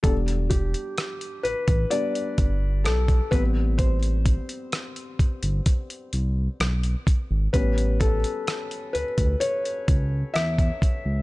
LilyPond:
<<
  \new Staff \with { instrumentName = "Felt piano" } { \time 4/4 \key a \minor \tempo 4 = 64 a'8 g'4 b'8 d''4 a'8 b'8 | c''2 r2 | b'8 a'4 b'8 cis''4 e''4 | }
  \new Staff \with { instrumentName = "Felt piano" } { \time 4/4 \key a \minor <g b d'>2 <g b d'>8 r4 <g b c'>8 | r1 | <g b cis'>8 r2. r8 | }
  \new Staff \with { instrumentName = "Analog synth bass" } { \clef bass \time 4/4 \key a \minor e,,4 r8 a,,16 a,,16 r8 g,,8 b,,8 a,,8~ | a,,4 r8 g,,16 g,,16 r8 c,8 b,,8 r16 gis,,16 | a,,4 r8 d,16 d,16 r8 cis,8 e,8 r16 cis,16 | }
  \new DrumStaff \with { instrumentName = "Drums" } \drummode { \time 4/4 <hh bd>16 hh16 <hh bd>16 hh16 <hh ss>16 hh16 hh16 <hh bd>16 hh16 hh16 <hh bd>8 <hh ss>16 <hh bd>16 <hh bd>8 | <hh bd>16 hh16 <hh bd>16 hh16 <hh ss>16 hh16 <hh bd>16 hh16 <hh bd>16 hh16 hh8 <hh ss>16 hh16 <hh bd>8 | <hh bd>16 hh16 <hh bd>16 hh16 <hh ss>16 hh16 hh16 <hh bd>16 hh16 hh16 <hh bd>8 <hh ss>16 <hh bd>16 <hh bd>8 | }
>>